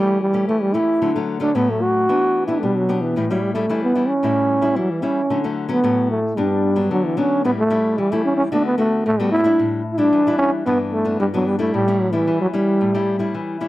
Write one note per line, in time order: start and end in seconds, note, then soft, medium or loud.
0.00 0.46 E3 medium
0.00 0.20 G3 medium
0.00 0.20 A3 medium
0.00 0.20 C#4 medium
0.00 0.20 G4 medium
0.21 0.46 G3 medium
0.33 0.70 A3 medium
0.33 0.70 C#4 medium
0.33 0.70 G4 medium
0.48 0.99 E3 medium
0.48 0.63 A3 medium
0.62 0.76 G3 medium
0.74 0.99 A3 medium
0.74 0.99 C#4 medium
0.74 1.15 E4 medium
0.74 1.00 G4 medium
1.02 1.53 D3 medium
1.02 1.11 F#3 medium
1.02 1.11 A3 medium
1.02 1.11 C#4 medium
1.16 1.38 F#3 medium
1.16 1.38 A3 medium
1.16 1.38 C#4 medium
1.40 1.50 F#3 medium
1.40 1.50 A3 medium
1.40 1.51 C#4 medium
1.40 1.57 D4 medium
1.55 2.06 A2 medium
1.55 2.04 F#3 medium
1.55 2.05 A3 medium
1.55 1.72 B3 medium
1.55 2.05 C#4 medium
1.70 1.83 A3 medium
1.82 2.47 F#4 loud
2.09 2.60 E3 medium
2.09 2.45 B3 medium
2.09 2.45 D4 medium
2.47 2.84 B3 medium
2.47 2.85 D4 medium
2.47 2.61 E4 medium
2.47 2.85 G4 medium
2.59 3.14 B2 medium
2.59 2.78 G3 medium
2.59 2.64 A3 medium
2.77 3.03 F#3 medium
2.89 3.14 B3 medium
2.89 3.14 D4 medium
2.89 3.14 G4 medium
3.01 3.32 E3 medium
3.16 3.67 A2 medium
3.16 3.24 G3 soft
3.16 3.25 C#4 medium
3.16 3.25 E4 medium
3.30 3.43 F#3 medium
3.30 3.53 G3 medium
3.30 3.53 C#4 medium
3.30 3.53 E4 medium
3.42 3.53 G3 medium
3.54 3.65 G3 medium
3.54 3.80 A3 medium
3.54 3.65 C#4 medium
3.54 3.65 E4 medium
3.69 4.21 E3 medium
3.69 3.92 G3 medium
3.69 3.92 C#4 medium
3.69 3.93 E4 medium
3.83 4.09 B3 medium
3.95 4.12 G3 medium
3.95 4.12 C#4 medium
3.95 4.12 E4 medium
4.08 4.78 C#4 medium
4.23 4.74 A2 medium
4.23 4.59 G3 soft
4.23 4.59 C#4 soft
4.23 4.60 E4 medium
4.62 4.98 G3 soft
4.62 4.99 C#4 soft
4.62 4.99 E4 medium
4.76 5.28 E3 medium
4.76 4.92 F#3 medium
4.91 5.04 E3 medium
5.02 5.20 G3 medium
5.02 5.20 C#4 medium
5.02 5.43 C#4 medium
5.02 5.21 E4 medium
5.30 5.81 D3 medium
5.30 5.38 F#3 soft
5.30 5.39 A3 medium
5.30 5.39 C#4 medium
5.44 5.66 F#3 soft
5.44 5.67 A3 soft
5.44 5.67 C#4 medium
5.69 5.79 F#3 medium
5.69 5.79 A3 soft
5.69 6.07 B3 medium
5.69 5.79 C#4 medium
5.84 6.35 A2 medium
5.84 6.18 F#3 medium
5.84 6.18 A3 medium
5.84 6.19 C#4 medium
6.10 6.39 A3 medium
6.37 6.88 G2 medium
6.37 6.91 G3 medium
6.37 6.73 B3 soft
6.37 6.74 D4 medium
6.76 7.13 F#3 medium
6.76 7.13 B3 medium
6.76 7.13 D4 medium
6.91 7.42 D3 medium
6.91 7.07 F#3 medium
7.05 7.19 E3 medium
7.17 7.42 F#3 medium
7.17 7.42 B3 medium
7.17 7.44 C#4 medium
7.17 7.42 D4 medium
7.44 7.96 A2 medium
7.44 7.60 G3 medium
7.44 7.51 B3 medium
7.44 7.61 C#4 soft
7.44 7.61 E4 medium
7.59 8.01 A3 medium
7.70 8.07 G3 medium
7.70 8.07 C#4 medium
7.70 8.07 E4 medium
7.98 8.49 E3 medium
7.98 8.14 G3 medium
8.12 8.48 G3 medium
8.12 8.25 A3 medium
8.12 8.48 C#4 medium
8.12 8.48 E4 medium
8.25 8.37 C#4 medium
8.37 8.44 C#4 medium
8.52 9.03 D3 medium
8.52 8.74 A3 medium
8.52 8.75 B3 medium
8.52 8.64 D4 medium
8.52 8.75 F#4 medium
8.66 8.77 B3 medium
8.78 9.03 A3 medium
8.78 9.04 B3 medium
8.78 9.04 F#4 medium
9.06 9.57 A2 medium
9.06 9.21 A3 loud
9.20 9.31 G3 medium
9.20 9.42 A3 medium
9.20 9.42 B3 medium
9.20 9.42 F#4 medium
9.32 9.69 E4 loud
9.44 9.81 G3 medium
9.44 9.81 D4 medium
9.44 9.81 E4 medium
9.59 10.10 A2 medium
9.93 9.99 E4 medium
9.98 10.21 G3 medium
9.98 10.38 D4 loud
9.98 10.21 D4 medium
9.98 10.21 E4 medium
10.13 10.64 E3 medium
10.27 10.62 G3 medium
10.27 10.63 D4 medium
10.27 10.63 E4 medium
10.38 10.51 C#4 loud
10.66 11.17 G2 medium
10.66 11.02 E3 medium
10.66 10.78 B3 medium
10.66 11.02 B3 medium
10.66 11.03 D4 medium
10.92 11.18 A3 medium
11.05 11.28 E3 medium
11.05 11.28 B3 soft
11.05 11.29 D4 medium
11.20 11.71 G2 medium
11.20 11.26 G3 medium
11.34 11.56 E3 medium
11.34 11.48 F#3 medium
11.34 11.56 B3 medium
11.34 11.56 D4 medium
11.46 11.58 G3 medium
11.59 11.86 G3 medium
11.59 11.75 A3 medium
11.59 11.87 C#4 medium
11.59 11.87 E4 medium
11.74 12.25 A2 medium
11.74 12.01 G3 medium
11.88 12.10 G3 medium
11.88 12.10 C#4 medium
11.88 12.10 E4 medium
12.00 12.14 F#3 medium
12.12 12.40 E3 medium
12.12 12.49 G3 medium
12.12 12.49 C#4 medium
12.12 12.49 E4 medium
12.27 12.78 E3 medium
12.41 12.47 F#3 medium
12.53 12.90 G3 medium
12.53 13.30 G3 medium
12.53 12.90 C#4 medium
12.53 12.90 E4 medium
12.81 13.32 A2 medium
12.94 13.17 G3 medium
12.94 13.17 C#4 medium
12.94 13.17 E4 medium
13.19 13.56 G3 medium
13.19 13.56 C#4 soft
13.19 13.56 E4 medium
13.34 13.68 E3 medium
13.61 13.68 G3 soft
13.61 13.68 C#4 medium
13.61 13.68 E4 medium